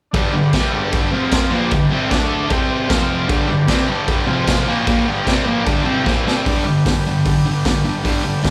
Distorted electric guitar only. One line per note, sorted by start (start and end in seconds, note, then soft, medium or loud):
0.14 0.32 G2 medium
0.14 0.33 D3 loud
0.14 0.34 G3 loud
0.33 0.49 G2 medium
0.33 0.50 D3 medium
0.54 0.72 C3 medium
0.54 0.72 G3 loud
0.54 0.74 C4 medium
0.72 1.11 G2 medium
0.72 1.12 D3 loud
0.72 1.12 G3 loud
1.12 1.51 F2 medium
1.12 1.50 C3 loud
1.12 1.51 F3 loud
1.51 1.70 A#2 loud
1.51 1.71 F3 loud
1.51 1.71 A#3 loud
1.73 1.88 G2 medium
1.73 1.88 D3 medium
1.91 2.10 C3 medium
1.91 2.11 G3 loud
1.91 2.11 C4 medium
2.11 2.49 D3 medium
2.11 2.50 A3 loud
2.11 2.51 D4 loud
2.50 2.88 C3 loud
2.50 2.90 G3 loud
2.50 2.90 C4 loud
2.89 3.27 F2 loud
2.89 3.28 C3 loud
2.89 3.29 F3 loud
3.28 3.47 G2 loud
3.28 3.48 D3 loud
3.28 3.49 G3 loud
3.48 3.65 G2 medium
3.48 3.65 D3 medium
3.67 3.87 C3 loud
3.67 3.88 G3 loud
3.67 3.88 C4 loud
3.88 4.26 G2 loud
3.88 4.27 D3 loud
3.88 4.28 G3 loud
4.27 4.66 F2 medium
4.27 4.66 C3 loud
4.27 4.67 F3 loud
4.67 4.85 A#2 loud
4.67 4.86 F3 medium
4.67 4.86 A#3 loud
4.86 5.06 A#2 loud
4.86 5.06 F3 medium
4.86 5.07 A#3 loud
5.06 5.25 G2 medium
5.06 5.25 D3 medium
5.06 5.25 G3 loud
5.26 5.44 C3 medium
5.26 5.46 G3 loud
5.26 5.46 C4 loud
5.45 5.65 A#2 medium
5.45 5.66 F3 medium
5.45 5.66 A#3 loud
5.64 5.84 G2 medium
5.64 5.84 D3 loud
5.64 5.84 G3 loud
5.84 6.04 C3 loud
5.84 6.05 G3 loud
5.84 6.05 C4 loud
6.05 6.24 A#2 loud
6.05 6.25 F3 loud
6.05 6.25 A#3 loud
6.25 6.45 C3 medium
6.25 6.45 G3 medium
6.25 6.46 C4 loud
6.45 6.64 G2 medium
6.45 6.63 D3 medium
6.45 6.65 G3 medium
6.65 6.83 G2 medium
6.65 6.83 D3 medium
6.86 7.03 G2 medium
6.86 7.04 D3 medium
7.06 7.24 G2 medium
7.06 7.24 D3 medium
7.26 7.43 G2 medium
7.26 7.44 D3 medium
7.46 7.63 G2 medium
7.46 7.63 D3 medium
7.65 7.83 G2 medium
7.65 7.83 D3 medium
7.84 8.02 G2 medium
7.84 8.03 D3 medium
8.04 8.23 G2 medium
8.04 8.23 D3 medium
8.04 8.24 G3 medium
8.24 8.42 G2 medium
8.24 8.42 D3 medium
8.43 8.50 G2 medium
8.43 8.50 D3 medium